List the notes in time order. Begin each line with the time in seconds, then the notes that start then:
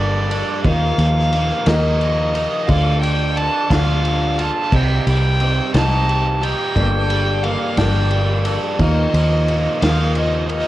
Already playing: G1 G2 D3 G3 A#3 D4 A4 D5
0.29 G3 A#3 D4 A4, ride
0.64 D#2 D#3 F3 A#3 D#4 F4 A#4 D#5 F5, kick, ride
0.98 D#2 F3, ride
1.32 F3 A#3 D#4 A#4, ride
1.66 D#2 D#3 F3 A#3 D#4 A#4 D#5, snare, ride
2.01 F3, ride
2.34 A#3 D#4 A#4, ride
2.68 D2 D3 F3 D4 F4 A4 D5 F5, kick, ride
3.01 D3 G5, ride
3.36 F3 D4 F4 A4 A5, ride
3.70 D2 D3 F3 D4 F4 A4 F5, kick, snare, ride
4.04 D3, ride
4.38 D4 F4 A4 A5, ride
4.72 C2 C3 G3 C4 D#4 G4 C5 D#5 G5, kick, crash
5.07 C2 G3 G5, ride
5.40 G3 C4 D#4 G4, ride
5.74 C2 C3 G3 C4 D#4 G4 A5, snare, ride
6.08 G3, ride
6.41 C4 D#4 G4 G5, ride
6.75 G1 G2 D3 G3 A#3 D4 A4 D5 G5, kick, ride
7.10 G3, ride
7.43 G3 A#3 D4 A4 F5, ride
7.77 G1 G2 D3 G3 A#3 D4 A4 G5, kick, snare, ride
8.11 G3, ride
8.45 G3 A#3 D4 A4, ride
8.79 D#2 D#3 F3 A#3 F4 A#4 D#5 F5, kick, ride
9.14 D#2 F3, ride
9.46 F3 A#3 F4 A#4, ride
9.81 D#2 D#3 F3 A#3 D#4 F4 A#4 F5, snare, ride
10.15 F3 D#5, ride
10.49 A#3 D#4 F4 A#4 D#5, ride